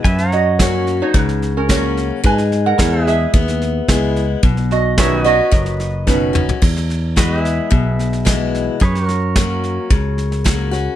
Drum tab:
CC |----------------|----------------|----------------|x---------------|
HH |----p-------p---|----p-------p---|----p-------p---|----p-------p---|
SD |ooo-o-o-ooo-o-o-|ooo-o-o-ooo-o-o-|ooo-o-o-ooo-o---|ooo-o-o-o-ooo-o-|
T2 |----------------|----------------|--------------o-|----------------|
FT |----------------|----------------|---------------o|----------------|
BD |o---o---o---o---|o---o---o---o---|o---o---o---o---|o---o---o---o---|

CC |----------------|
HH |----p-------p---|
SD |ooo-o-o-o-ooo-o-|
T2 |----------------|
FT |----------------|
BD |o---o---o---o---|